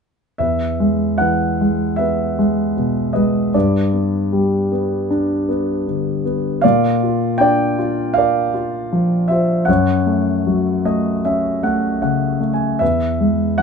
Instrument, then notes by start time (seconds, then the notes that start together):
grand piano
0.38 E2 B4 E5
0.80 G#3
1.18 E3 B4 F#5
1.61 G#3
1.96 B3 B4 E5
2.39 G#3
2.77 B2
3.13 G#3 B4 D#5
3.54 G2 B4 D5
3.93 B3
4.33 G3
4.72 B3
5.10 D4
5.49 B3
5.87 D3
6.25 B3
6.61 A#2 D5 F5
7.03 F4
7.38 D4 D5 G5
7.79 F4
8.14 A#4 F5
8.18 D5
8.54 F4
8.93 F3
9.28 F4 C5 E5
9.65 F#2 C#5 F#5
10.06 A3
10.47 F#3
10.85 A3 D#5
11.25 C#4 E5
11.63 A3 F#5
12.02 C#3 F#5
12.40 A3
12.53 G#5
12.79 E2 B4 E5
13.20 G#3
13.58 E3 F#5